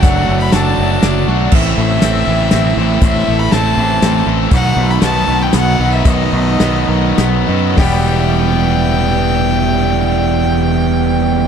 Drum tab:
CC |------|x-----|------|------|
HH |x-x-x-|--x-x-|x-x-x-|x-x-x-|
SD |--o-o-|--o-o-|--o-o-|--o-o-|
BD |o-----|o-----|o-----|o-----|

CC |------|------|------|
HH |x-x-x-|o-----|------|
SD |--o-o-|o-----|------|
BD |o-----|o-----|------|